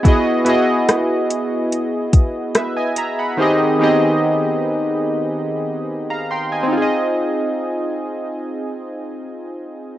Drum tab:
HH |xxxxxxxx|--------|--------|
SD |--r---r-|--------|--------|
BD |o----o--|--------|--------|